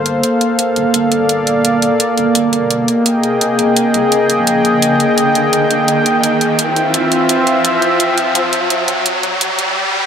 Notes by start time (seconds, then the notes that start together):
Already playing: G1 A#3 A4 C5 F5, riser
0.06 closed hi-hat
0.23 closed hi-hat
0.41 closed hi-hat
0.59 closed hi-hat
0.76 G1, closed hi-hat
0.94 G1 D5, closed hi-hat
1.12 closed hi-hat
1.21 G1
1.29 closed hi-hat
1.47 closed hi-hat
1.65 closed hi-hat
1.82 closed hi-hat
2.00 closed hi-hat
2.18 G1, closed hi-hat
2.35 G1, closed hi-hat
2.53 closed hi-hat
2.71 closed hi-hat
2.88 G#4 D#5 G5, closed hi-hat
3.06 closed hi-hat
3.23 closed hi-hat
3.41 closed hi-hat
3.59 F1, closed hi-hat
3.76 closed hi-hat
3.94 C2, closed hi-hat
4.12 closed hi-hat
4.29 D#1, closed hi-hat
4.38 A#1
4.47 closed hi-hat
4.65 closed hi-hat
4.82 closed hi-hat
5.00 F1, closed hi-hat
5.18 F1, closed hi-hat
5.35 closed hi-hat
5.53 closed hi-hat
5.71 closed hi-hat
5.88 closed hi-hat
6.06 closed hi-hat
6.23 closed hi-hat
6.41 F1, closed hi-hat
6.59 D1 C4 F4 E5, closed hi-hat
6.76 closed hi-hat
6.85 D1
6.94 closed hi-hat
7.12 closed hi-hat
7.29 closed hi-hat
7.47 closed hi-hat
7.65 closed hi-hat
7.82 D1, closed hi-hat
8.00 D1, closed hi-hat
8.18 closed hi-hat
8.35 closed hi-hat
8.53 closed hi-hat
8.70 closed hi-hat
8.88 closed hi-hat
9.06 closed hi-hat
9.23 D1, closed hi-hat
9.41 closed hi-hat
9.59 closed hi-hat